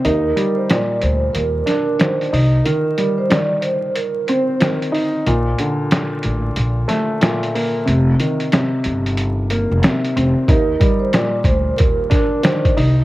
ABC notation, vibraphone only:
X:1
M:4/4
L:1/16
Q:"Swing 16ths" 1/4=92
K:Eblyd
V:1 name="Vibraphone"
B3 c d2 c2 B2 B2 c2 z2 | B3 c d2 c2 B2 c3 z3 | z16 | z16 |
B3 c d2 c2 B2 B2 c2 z2 |]